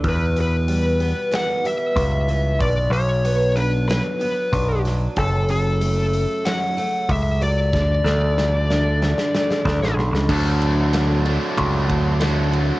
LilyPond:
<<
  \new Staff \with { instrumentName = "Lead electric guitar" } { \time 4/4 \key d \lydian \tempo 4 = 94 b'8 b'4. fis''8 e''4. | d''8 cis''4 b'8 b'4. r8 | a'8 a'4. fis''4 e''8 d''8~ | d''2.~ d''8 r8 |
r1 | }
  \new Staff \with { instrumentName = "Distorted electric guitar" } { \time 4/4 \key d \lydian r1 | r1 | r1 | r1 |
<d fis a d' fis'>4. <d fis a d' fis'>4. <d fis a d' fis'>4 | }
  \new Staff \with { instrumentName = "Steel-string acoustic guitar" } { \clef bass \time 4/4 \key d \lydian e,8 b,8 g8 b8 e8 g8 b8 e8 | b,8 fis8 b8 d'8 fis8 b8 d'8 fis8 | fis,8 cis8 a4 fis8 a4 fis8 | d8 a8 a8 d'8 d8 a8 d'8 d8 |
r1 | }
  \new Staff \with { instrumentName = "Picked electric bass" } { \clef bass \time 4/4 \key d \lydian e,2 r4 cis,4 | b,,8 b,,2 r8 b,,4 | fis,,2 r4 cis,4 | d,8 d,2 r8 d,16 a,,16 b,,16 cis,16 |
d,2 cis,8 d,4. | }
  \new DrumStaff \with { instrumentName = "Drums" } \drummode { \time 4/4 <hho bd>8 hho8 hho8 hho8 <hho sn>8 hho8 <hho bd>8 hho8 | <hho bd>8 hho8 hho8 hho8 <hho sn>8 hho8 <hho bd>8 <hho sn>8 | <hho bd>8 hho8 hho8 hho8 <hho sn>8 hho8 <hho bd>8 hho8 | <bd sn>8 sn8 sn8 sn8 sn16 sn16 sn16 sn16 <bd sn>16 sn16 sn16 sn16 |
<cymc bd>8 cymr8 <cymr sn>8 cymr8 <bd cymr>8 <bd cymr>8 <cymr sn>8 cymr8 | }
>>